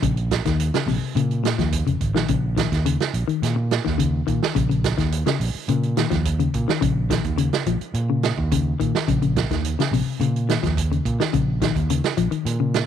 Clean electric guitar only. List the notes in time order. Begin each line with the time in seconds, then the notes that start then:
0.02 C#3
0.46 D#3
0.74 C#3
0.88 C3
1.16 C#3
1.44 A#2
1.58 F3
1.87 C#3
2.15 D#3
2.29 C#3
2.56 D#3
2.86 C#3
3.28 D#3
3.56 muted clean electric guitar stroke
3.85 D#3
3.98 C#3
4.27 D#3
4.55 C#3
4.69 C#3
4.98 D#3
5.26 C#3
5.69 C#3
5.97 D#3
6.10 F3
6.39 C#3
6.68 D#3
6.81 C#3
7.10 D#3
7.38 C#3
7.67 F3
8.10 C#3
8.52 C#3
8.80 D#3
9.08 C#3
9.22 C#3
9.51 D#3
9.79 C#3
9.93 C3
10.21 C#3
10.49 D#3
10.63 F3
10.92 C#3
11.20 D#3
11.33 C#3
11.62 D#3
11.90 C#3
12.17 F3
12.31 D#3
12.60 C#3